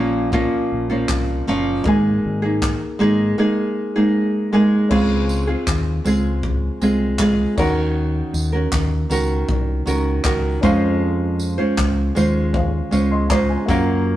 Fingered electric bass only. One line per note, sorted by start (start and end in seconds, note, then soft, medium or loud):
0.00 0.42 A#1 medium
0.72 1.03 A#1 medium
1.09 1.40 C2 medium
1.49 1.79 F#1 medium
1.85 2.17 G#1 loud
2.25 2.71 G#1 medium
3.01 3.32 G#1 medium
4.91 5.54 C#2 loud
5.67 5.98 D#2 medium
6.05 6.68 C#2 medium
6.81 7.44 C2 medium
7.58 8.20 D#2 medium
8.33 8.65 D#2 loud
8.72 9.04 D#2 medium
9.10 9.42 C#2 medium
9.49 9.80 C2 medium
9.86 10.18 C#2 medium
10.24 10.56 C#2 medium
10.63 11.57 F2 medium
11.78 12.09 C#2 medium
12.16 12.79 D#2 medium
12.92 13.55 C#2 medium
13.69 14.16 F#2 medium